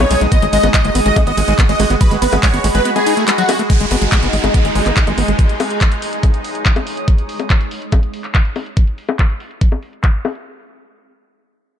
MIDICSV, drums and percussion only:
0, 0, Header, 1, 2, 480
1, 0, Start_track
1, 0, Key_signature, 5, "minor"
1, 0, Tempo, 422535
1, 361, Time_signature, 4, 2, 24, 8
1, 13397, End_track
2, 0, Start_track
2, 0, Title_t, "Drums"
2, 1, Note_on_c, 9, 42, 52
2, 1, Note_on_c, 9, 60, 84
2, 114, Note_off_c, 9, 42, 0
2, 114, Note_off_c, 9, 60, 0
2, 121, Note_on_c, 9, 46, 101
2, 121, Note_on_c, 9, 51, 81
2, 234, Note_off_c, 9, 46, 0
2, 234, Note_off_c, 9, 51, 0
2, 241, Note_on_c, 9, 42, 55
2, 355, Note_off_c, 9, 42, 0
2, 361, Note_on_c, 9, 36, 116
2, 361, Note_on_c, 9, 42, 81
2, 361, Note_on_c, 9, 51, 58
2, 475, Note_off_c, 9, 36, 0
2, 475, Note_off_c, 9, 42, 0
2, 475, Note_off_c, 9, 51, 0
2, 481, Note_on_c, 9, 42, 57
2, 595, Note_off_c, 9, 42, 0
2, 601, Note_on_c, 9, 46, 105
2, 601, Note_on_c, 9, 51, 88
2, 715, Note_off_c, 9, 46, 0
2, 715, Note_off_c, 9, 51, 0
2, 721, Note_on_c, 9, 42, 53
2, 721, Note_on_c, 9, 60, 42
2, 835, Note_off_c, 9, 42, 0
2, 835, Note_off_c, 9, 60, 0
2, 841, Note_on_c, 9, 36, 116
2, 841, Note_on_c, 9, 39, 127
2, 841, Note_on_c, 9, 42, 87
2, 841, Note_on_c, 9, 51, 64
2, 955, Note_off_c, 9, 36, 0
2, 955, Note_off_c, 9, 39, 0
2, 955, Note_off_c, 9, 42, 0
2, 955, Note_off_c, 9, 51, 0
2, 961, Note_on_c, 9, 42, 56
2, 1075, Note_off_c, 9, 42, 0
2, 1081, Note_on_c, 9, 46, 110
2, 1081, Note_on_c, 9, 51, 87
2, 1195, Note_off_c, 9, 46, 0
2, 1195, Note_off_c, 9, 51, 0
2, 1201, Note_on_c, 9, 42, 53
2, 1315, Note_off_c, 9, 42, 0
2, 1321, Note_on_c, 9, 36, 122
2, 1321, Note_on_c, 9, 42, 84
2, 1321, Note_on_c, 9, 51, 59
2, 1321, Note_on_c, 9, 60, 82
2, 1435, Note_off_c, 9, 36, 0
2, 1435, Note_off_c, 9, 42, 0
2, 1435, Note_off_c, 9, 51, 0
2, 1435, Note_off_c, 9, 60, 0
2, 1441, Note_on_c, 9, 42, 54
2, 1555, Note_off_c, 9, 42, 0
2, 1561, Note_on_c, 9, 46, 103
2, 1561, Note_on_c, 9, 51, 83
2, 1675, Note_off_c, 9, 46, 0
2, 1675, Note_off_c, 9, 51, 0
2, 1681, Note_on_c, 9, 42, 54
2, 1795, Note_off_c, 9, 42, 0
2, 1801, Note_on_c, 9, 36, 124
2, 1801, Note_on_c, 9, 39, 117
2, 1801, Note_on_c, 9, 42, 87
2, 1801, Note_on_c, 9, 51, 59
2, 1915, Note_off_c, 9, 36, 0
2, 1915, Note_off_c, 9, 39, 0
2, 1915, Note_off_c, 9, 42, 0
2, 1915, Note_off_c, 9, 51, 0
2, 1921, Note_on_c, 9, 42, 54
2, 2035, Note_off_c, 9, 42, 0
2, 2041, Note_on_c, 9, 46, 100
2, 2041, Note_on_c, 9, 51, 85
2, 2041, Note_on_c, 9, 60, 43
2, 2155, Note_off_c, 9, 46, 0
2, 2155, Note_off_c, 9, 51, 0
2, 2155, Note_off_c, 9, 60, 0
2, 2161, Note_on_c, 9, 42, 58
2, 2275, Note_off_c, 9, 42, 0
2, 2281, Note_on_c, 9, 36, 121
2, 2281, Note_on_c, 9, 42, 82
2, 2281, Note_on_c, 9, 51, 58
2, 2395, Note_off_c, 9, 36, 0
2, 2395, Note_off_c, 9, 42, 0
2, 2395, Note_off_c, 9, 51, 0
2, 2401, Note_on_c, 9, 42, 59
2, 2515, Note_off_c, 9, 42, 0
2, 2521, Note_on_c, 9, 46, 104
2, 2521, Note_on_c, 9, 51, 86
2, 2635, Note_off_c, 9, 46, 0
2, 2635, Note_off_c, 9, 51, 0
2, 2642, Note_on_c, 9, 42, 58
2, 2642, Note_on_c, 9, 60, 77
2, 2755, Note_off_c, 9, 42, 0
2, 2755, Note_off_c, 9, 60, 0
2, 2761, Note_on_c, 9, 36, 117
2, 2761, Note_on_c, 9, 39, 127
2, 2761, Note_on_c, 9, 42, 90
2, 2761, Note_on_c, 9, 51, 61
2, 2875, Note_off_c, 9, 36, 0
2, 2875, Note_off_c, 9, 39, 0
2, 2875, Note_off_c, 9, 42, 0
2, 2875, Note_off_c, 9, 51, 0
2, 2881, Note_on_c, 9, 42, 57
2, 2995, Note_off_c, 9, 42, 0
2, 3001, Note_on_c, 9, 46, 106
2, 3001, Note_on_c, 9, 51, 88
2, 3115, Note_off_c, 9, 46, 0
2, 3115, Note_off_c, 9, 51, 0
2, 3122, Note_on_c, 9, 42, 54
2, 3235, Note_off_c, 9, 42, 0
2, 3242, Note_on_c, 9, 42, 86
2, 3242, Note_on_c, 9, 51, 58
2, 3355, Note_off_c, 9, 42, 0
2, 3355, Note_off_c, 9, 51, 0
2, 3362, Note_on_c, 9, 42, 54
2, 3362, Note_on_c, 9, 60, 38
2, 3475, Note_off_c, 9, 42, 0
2, 3475, Note_off_c, 9, 60, 0
2, 3482, Note_on_c, 9, 46, 106
2, 3482, Note_on_c, 9, 51, 85
2, 3595, Note_off_c, 9, 46, 0
2, 3595, Note_off_c, 9, 51, 0
2, 3602, Note_on_c, 9, 42, 55
2, 3715, Note_off_c, 9, 42, 0
2, 3722, Note_on_c, 9, 39, 127
2, 3722, Note_on_c, 9, 42, 90
2, 3722, Note_on_c, 9, 51, 59
2, 3836, Note_off_c, 9, 39, 0
2, 3836, Note_off_c, 9, 42, 0
2, 3836, Note_off_c, 9, 51, 0
2, 3842, Note_on_c, 9, 42, 52
2, 3955, Note_off_c, 9, 42, 0
2, 3962, Note_on_c, 9, 46, 104
2, 3962, Note_on_c, 9, 51, 79
2, 3962, Note_on_c, 9, 60, 80
2, 4076, Note_off_c, 9, 46, 0
2, 4076, Note_off_c, 9, 51, 0
2, 4076, Note_off_c, 9, 60, 0
2, 4082, Note_on_c, 9, 42, 58
2, 4195, Note_off_c, 9, 42, 0
2, 4202, Note_on_c, 9, 36, 120
2, 4202, Note_on_c, 9, 42, 81
2, 4315, Note_off_c, 9, 36, 0
2, 4315, Note_off_c, 9, 42, 0
2, 4321, Note_on_c, 9, 42, 56
2, 4435, Note_off_c, 9, 42, 0
2, 4442, Note_on_c, 9, 46, 106
2, 4442, Note_on_c, 9, 60, 38
2, 4555, Note_off_c, 9, 46, 0
2, 4555, Note_off_c, 9, 60, 0
2, 4561, Note_on_c, 9, 42, 56
2, 4675, Note_off_c, 9, 42, 0
2, 4681, Note_on_c, 9, 39, 127
2, 4681, Note_on_c, 9, 42, 83
2, 4682, Note_on_c, 9, 36, 118
2, 4795, Note_off_c, 9, 36, 0
2, 4795, Note_off_c, 9, 39, 0
2, 4795, Note_off_c, 9, 42, 0
2, 4802, Note_on_c, 9, 42, 53
2, 4915, Note_off_c, 9, 42, 0
2, 4921, Note_on_c, 9, 46, 105
2, 5035, Note_off_c, 9, 46, 0
2, 5041, Note_on_c, 9, 42, 53
2, 5041, Note_on_c, 9, 60, 70
2, 5155, Note_off_c, 9, 42, 0
2, 5155, Note_off_c, 9, 60, 0
2, 5161, Note_on_c, 9, 42, 84
2, 5162, Note_on_c, 9, 36, 125
2, 5275, Note_off_c, 9, 36, 0
2, 5275, Note_off_c, 9, 42, 0
2, 5281, Note_on_c, 9, 42, 54
2, 5395, Note_off_c, 9, 42, 0
2, 5401, Note_on_c, 9, 46, 104
2, 5515, Note_off_c, 9, 46, 0
2, 5521, Note_on_c, 9, 39, 39
2, 5521, Note_on_c, 9, 42, 51
2, 5635, Note_off_c, 9, 39, 0
2, 5635, Note_off_c, 9, 42, 0
2, 5641, Note_on_c, 9, 39, 121
2, 5641, Note_on_c, 9, 42, 85
2, 5642, Note_on_c, 9, 36, 114
2, 5755, Note_off_c, 9, 36, 0
2, 5755, Note_off_c, 9, 39, 0
2, 5755, Note_off_c, 9, 42, 0
2, 5761, Note_on_c, 9, 42, 52
2, 5761, Note_on_c, 9, 60, 38
2, 5875, Note_off_c, 9, 42, 0
2, 5875, Note_off_c, 9, 60, 0
2, 5881, Note_on_c, 9, 46, 103
2, 5995, Note_off_c, 9, 46, 0
2, 6001, Note_on_c, 9, 42, 57
2, 6115, Note_off_c, 9, 42, 0
2, 6121, Note_on_c, 9, 36, 127
2, 6121, Note_on_c, 9, 42, 81
2, 6235, Note_off_c, 9, 36, 0
2, 6235, Note_off_c, 9, 42, 0
2, 6241, Note_on_c, 9, 42, 54
2, 6355, Note_off_c, 9, 42, 0
2, 6361, Note_on_c, 9, 46, 111
2, 6361, Note_on_c, 9, 60, 72
2, 6475, Note_off_c, 9, 46, 0
2, 6475, Note_off_c, 9, 60, 0
2, 6481, Note_on_c, 9, 42, 53
2, 6595, Note_off_c, 9, 42, 0
2, 6601, Note_on_c, 9, 36, 120
2, 6601, Note_on_c, 9, 39, 127
2, 6601, Note_on_c, 9, 42, 85
2, 6715, Note_off_c, 9, 36, 0
2, 6715, Note_off_c, 9, 39, 0
2, 6715, Note_off_c, 9, 42, 0
2, 6721, Note_on_c, 9, 42, 53
2, 6835, Note_off_c, 9, 42, 0
2, 6841, Note_on_c, 9, 46, 108
2, 6955, Note_off_c, 9, 46, 0
2, 6961, Note_on_c, 9, 42, 52
2, 7075, Note_off_c, 9, 42, 0
2, 7081, Note_on_c, 9, 36, 127
2, 7081, Note_on_c, 9, 42, 76
2, 7081, Note_on_c, 9, 60, 37
2, 7195, Note_off_c, 9, 36, 0
2, 7195, Note_off_c, 9, 42, 0
2, 7195, Note_off_c, 9, 60, 0
2, 7201, Note_on_c, 9, 42, 53
2, 7315, Note_off_c, 9, 42, 0
2, 7321, Note_on_c, 9, 46, 107
2, 7435, Note_off_c, 9, 46, 0
2, 7441, Note_on_c, 9, 42, 52
2, 7555, Note_off_c, 9, 42, 0
2, 7561, Note_on_c, 9, 36, 126
2, 7561, Note_on_c, 9, 39, 125
2, 7561, Note_on_c, 9, 42, 81
2, 7675, Note_off_c, 9, 36, 0
2, 7675, Note_off_c, 9, 39, 0
2, 7675, Note_off_c, 9, 42, 0
2, 7681, Note_on_c, 9, 42, 53
2, 7681, Note_on_c, 9, 60, 70
2, 7795, Note_off_c, 9, 42, 0
2, 7795, Note_off_c, 9, 60, 0
2, 7801, Note_on_c, 9, 46, 106
2, 7915, Note_off_c, 9, 46, 0
2, 7921, Note_on_c, 9, 42, 57
2, 8035, Note_off_c, 9, 42, 0
2, 8041, Note_on_c, 9, 36, 127
2, 8041, Note_on_c, 9, 42, 71
2, 8154, Note_off_c, 9, 42, 0
2, 8155, Note_off_c, 9, 36, 0
2, 8161, Note_on_c, 9, 42, 53
2, 8275, Note_off_c, 9, 42, 0
2, 8281, Note_on_c, 9, 46, 105
2, 8395, Note_off_c, 9, 46, 0
2, 8401, Note_on_c, 9, 42, 51
2, 8401, Note_on_c, 9, 60, 37
2, 8515, Note_off_c, 9, 42, 0
2, 8515, Note_off_c, 9, 60, 0
2, 8521, Note_on_c, 9, 36, 127
2, 8521, Note_on_c, 9, 39, 123
2, 8521, Note_on_c, 9, 42, 81
2, 8635, Note_off_c, 9, 36, 0
2, 8635, Note_off_c, 9, 39, 0
2, 8635, Note_off_c, 9, 42, 0
2, 8641, Note_on_c, 9, 42, 50
2, 8755, Note_off_c, 9, 42, 0
2, 8761, Note_on_c, 9, 46, 116
2, 8875, Note_off_c, 9, 46, 0
2, 8881, Note_on_c, 9, 42, 49
2, 8995, Note_off_c, 9, 42, 0
2, 9001, Note_on_c, 9, 36, 127
2, 9002, Note_on_c, 9, 42, 75
2, 9002, Note_on_c, 9, 60, 79
2, 9115, Note_off_c, 9, 36, 0
2, 9115, Note_off_c, 9, 42, 0
2, 9115, Note_off_c, 9, 60, 0
2, 9122, Note_on_c, 9, 42, 50
2, 9235, Note_off_c, 9, 42, 0
2, 9241, Note_on_c, 9, 46, 112
2, 9355, Note_off_c, 9, 46, 0
2, 9362, Note_on_c, 9, 39, 37
2, 9362, Note_on_c, 9, 42, 51
2, 9475, Note_off_c, 9, 39, 0
2, 9475, Note_off_c, 9, 42, 0
2, 9481, Note_on_c, 9, 36, 124
2, 9482, Note_on_c, 9, 39, 119
2, 9482, Note_on_c, 9, 42, 75
2, 9595, Note_off_c, 9, 36, 0
2, 9595, Note_off_c, 9, 39, 0
2, 9595, Note_off_c, 9, 42, 0
2, 9602, Note_on_c, 9, 42, 48
2, 9716, Note_off_c, 9, 42, 0
2, 9722, Note_on_c, 9, 46, 106
2, 9722, Note_on_c, 9, 60, 37
2, 9835, Note_off_c, 9, 46, 0
2, 9835, Note_off_c, 9, 60, 0
2, 9842, Note_on_c, 9, 42, 52
2, 9955, Note_off_c, 9, 42, 0
2, 9961, Note_on_c, 9, 36, 125
2, 9961, Note_on_c, 9, 42, 74
2, 10075, Note_off_c, 9, 36, 0
2, 10075, Note_off_c, 9, 42, 0
2, 10081, Note_on_c, 9, 42, 50
2, 10195, Note_off_c, 9, 42, 0
2, 10201, Note_on_c, 9, 46, 105
2, 10315, Note_off_c, 9, 46, 0
2, 10321, Note_on_c, 9, 42, 49
2, 10321, Note_on_c, 9, 60, 78
2, 10435, Note_off_c, 9, 42, 0
2, 10435, Note_off_c, 9, 60, 0
2, 10441, Note_on_c, 9, 36, 118
2, 10442, Note_on_c, 9, 39, 119
2, 10442, Note_on_c, 9, 42, 76
2, 10555, Note_off_c, 9, 36, 0
2, 10555, Note_off_c, 9, 39, 0
2, 10555, Note_off_c, 9, 42, 0
2, 10562, Note_on_c, 9, 42, 50
2, 10675, Note_off_c, 9, 42, 0
2, 10682, Note_on_c, 9, 46, 114
2, 10795, Note_off_c, 9, 46, 0
2, 10801, Note_on_c, 9, 42, 47
2, 10915, Note_off_c, 9, 42, 0
2, 10921, Note_on_c, 9, 36, 127
2, 10922, Note_on_c, 9, 42, 71
2, 11035, Note_off_c, 9, 36, 0
2, 11035, Note_off_c, 9, 42, 0
2, 11041, Note_on_c, 9, 42, 47
2, 11041, Note_on_c, 9, 60, 38
2, 11155, Note_off_c, 9, 42, 0
2, 11155, Note_off_c, 9, 60, 0
2, 11161, Note_on_c, 9, 46, 106
2, 11275, Note_off_c, 9, 46, 0
2, 11282, Note_on_c, 9, 42, 47
2, 11395, Note_off_c, 9, 42, 0
2, 11401, Note_on_c, 9, 36, 124
2, 11401, Note_on_c, 9, 39, 116
2, 11515, Note_off_c, 9, 36, 0
2, 11515, Note_off_c, 9, 39, 0
2, 11521, Note_on_c, 9, 42, 46
2, 11635, Note_off_c, 9, 42, 0
2, 11641, Note_on_c, 9, 46, 102
2, 11641, Note_on_c, 9, 60, 75
2, 11755, Note_off_c, 9, 46, 0
2, 11755, Note_off_c, 9, 60, 0
2, 11761, Note_on_c, 9, 42, 48
2, 11875, Note_off_c, 9, 42, 0
2, 13397, End_track
0, 0, End_of_file